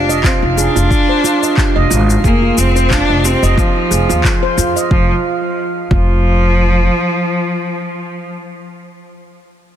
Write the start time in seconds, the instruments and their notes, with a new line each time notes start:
Already playing: upright bass F1, cello D4, synth texture F5
0.09 handpan D#5, cabasa
0.24 cello C4, handpan F4, kick, clap, cabasa
0.42 upright bass F1, handpan D#4
0.57 cello D4, handpan G#4, cabasa
0.76 upright bass F1, handpan F4, cabasa
0.91 handpan F4, kick, cabasa
1.09 handpan C5
1.24 handpan F4, cabasa
1.43 handpan D#5, cabasa
1.57 handpan G4, kick, clap, cabasa
1.76 upright bass F1, handpan D#5
1.90 upright bass G#1, handpan F4, cabasa
2.09 handpan D#4, cabasa
2.24 upright bass F1, cello A#3, handpan G#4, kick, cabasa
2.42 handpan F4
2.57 upright bass F1, cello C4, handpan F4, cabasa
2.76 handpan C5, cabasa
2.90 cello D4, handpan F4, kick, clap, cabasa
3.09 upright bass F1, handpan D#5
3.24 cello C4, handpan G4, cabasa
3.43 upright bass F1, handpan D#5, cabasa
3.58 cello F3, handpan F4, kick, cabasa
3.76 handpan D#4
3.91 upright bass F1, handpan G#4, cabasa
4.09 upright bass D#2, handpan F4, cabasa
4.24 handpan F4, kick, clap, cabasa
4.43 handpan C5
4.57 upright bass F2, handpan F4, cabasa
4.76 handpan D#5, cabasa
4.91 upright bass F1, cello F3, handpan F4, kick
5.91 upright bass F1, cello F3, handpan F4, kick